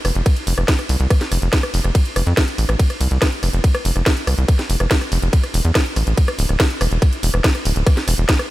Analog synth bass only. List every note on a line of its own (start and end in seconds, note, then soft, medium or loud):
0.05 0.12 F1 medium
0.15 0.22 F1 medium
0.47 0.54 F1 loud
0.58 0.65 F1 medium
0.89 0.96 C2 loud
1.00 1.07 C2 medium
1.32 1.39 F1 medium
1.42 1.49 F1 medium
1.74 1.81 F1 medium
1.84 1.91 F1 medium
2.16 2.23 F1 medium
2.27 2.34 F2 medium
2.58 2.65 A1 loud
2.69 2.76 A1 medium
3.01 3.08 C2 medium
3.11 3.18 C2 medium
3.43 3.50 F1 medium
3.53 3.60 F1 medium
3.85 3.92 F1 medium
3.96 4.03 F1 medium
4.27 4.34 C2 loud
4.38 4.45 C2 medium
4.70 4.77 F1 medium
4.80 4.87 F1 medium
5.12 5.19 F1 medium
5.22 5.29 F1 medium
5.54 5.61 E1 loud
5.65 5.72 E2 medium
5.96 6.03 A1 loud
6.07 6.14 A1 medium
6.39 6.46 D1 medium
6.49 6.56 D1 medium
6.81 6.88 E1 loud
6.91 6.99 E1 medium
7.23 7.30 E1 medium
7.34 7.41 E1 medium
7.65 7.72 D1 medium
7.76 7.83 D1 medium
8.08 8.15 E1 medium
8.18 8.25 E1 medium